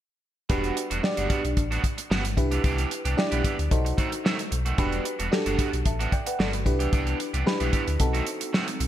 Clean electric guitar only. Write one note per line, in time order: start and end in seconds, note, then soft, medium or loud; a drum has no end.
0.49 0.74 G3 medium
0.49 0.75 B3 medium
0.49 0.75 D4 medium
0.49 0.75 F#4 medium
0.76 muted clean electric guitar stroke soft
0.90 1.01 G3 soft
0.90 1.01 B3 medium
0.90 1.01 D4 medium
0.90 1.01 F#4 medium
1.03 muted clean electric guitar stroke soft
1.17 1.29 G3 medium
1.17 1.29 B3 medium
1.17 1.30 D4 medium
1.17 1.30 F#4 medium
1.30 1.42 G3 medium
1.30 1.42 B3 medium
1.30 1.42 D4 medium
1.30 1.42 F#4 medium
1.44 muted clean electric guitar stroke soft
1.57 muted clean electric guitar stroke soft
1.71 1.82 G3 medium
1.71 1.83 B3 medium
1.71 1.83 D4 medium
1.71 1.83 F#4 medium
1.84 muted clean electric guitar stroke soft
1.98 muted clean electric guitar stroke medium
2.10 2.25 G3 medium
2.10 2.24 B3 medium
2.10 2.24 D4 medium
2.10 2.23 F#4 medium
2.24 muted clean electric guitar stroke soft
2.37 muted clean electric guitar stroke soft
2.51 2.62 E3 medium
2.51 2.62 B3 medium
2.51 2.62 D4 medium
2.51 2.62 G4 medium
2.64 2.89 E3 medium
2.64 2.89 B3 medium
2.64 2.89 D4 loud
2.64 2.89 G4 loud
2.91 muted clean electric guitar stroke soft
3.05 3.16 E3 soft
3.05 3.16 B3 medium
3.05 3.15 D4 medium
3.05 3.15 G4 medium
3.17 muted clean electric guitar stroke soft
3.31 3.43 E3 medium
3.31 3.43 B3 medium
3.31 3.44 D4 medium
3.31 3.44 G4 medium
3.44 3.56 E3 medium
3.44 3.56 B3 medium
3.44 3.56 D4 medium
3.44 3.56 G4 medium
3.58 muted clean electric guitar stroke soft
3.71 muted clean electric guitar stroke soft
3.85 muted clean electric guitar stroke medium
3.98 4.12 D#3 medium
3.98 4.11 A3 medium
3.98 4.11 C4 medium
3.98 4.10 F#4 medium
4.12 muted clean electric guitar stroke soft
4.24 4.39 D#3 medium
4.24 4.38 A3 medium
4.24 4.38 C4 medium
4.24 4.37 F#4 medium
4.38 muted clean electric guitar stroke soft
4.51 muted clean electric guitar stroke soft
4.65 4.76 D#3 medium
4.65 4.76 A3 medium
4.65 4.76 C4 medium
4.65 4.76 F#4 medium
4.78 5.03 G3 medium
4.78 5.03 B3 medium
4.78 5.03 D4 medium
4.78 5.04 F#4 medium
5.05 muted clean electric guitar stroke soft
5.19 5.30 G3 soft
5.19 5.30 B3 soft
5.19 5.30 D4 soft
5.19 5.29 F#4 medium
5.32 muted clean electric guitar stroke soft
5.46 5.57 G3 medium
5.46 5.58 B3 medium
5.46 5.58 D4 medium
5.46 5.59 F#4 medium
5.58 5.70 G3 medium
5.58 5.70 B3 medium
5.58 5.71 D4 medium
5.58 5.71 F#4 medium
5.73 muted clean electric guitar stroke soft
5.85 muted clean electric guitar stroke soft
5.99 6.11 G3 medium
5.99 6.11 B3 medium
5.99 6.11 D4 medium
5.99 6.12 F#4 medium
6.12 muted clean electric guitar stroke soft
6.26 muted clean electric guitar stroke soft
6.39 6.54 G3 medium
6.39 6.53 B3 medium
6.39 6.52 D4 medium
6.39 6.52 F#4 medium
6.53 muted clean electric guitar stroke soft
6.66 muted clean electric guitar stroke soft
6.79 6.91 E3 soft
6.79 6.90 B3 soft
6.79 6.90 D4 soft
6.79 6.90 G4 medium
6.92 7.17 E3 medium
6.92 7.17 B3 medium
6.92 7.18 D4 medium
6.92 7.18 G4 medium
7.19 muted clean electric guitar stroke soft
7.33 7.44 E3 soft
7.33 7.44 B3 medium
7.33 7.44 D4 medium
7.33 7.44 G4 medium
7.46 muted clean electric guitar stroke soft
7.60 7.71 E3 medium
7.60 7.72 B3 medium
7.60 7.72 D4 medium
7.60 7.73 G4 medium
7.73 7.84 E3 medium
7.73 7.85 B3 medium
7.73 7.85 D4 medium
7.73 7.85 G4 medium
7.87 muted clean electric guitar stroke medium
7.99 muted clean electric guitar stroke soft
8.13 8.25 D#3 medium
8.13 8.25 A3 medium
8.13 8.26 C4 medium
8.13 8.26 F#4 medium
8.26 muted clean electric guitar stroke soft
8.40 muted clean electric guitar stroke soft
8.53 8.68 D#3 medium
8.53 8.67 A3 medium
8.53 8.67 C4 loud
8.53 8.66 F#4 medium
8.67 muted clean electric guitar stroke soft
8.80 muted clean electric guitar stroke soft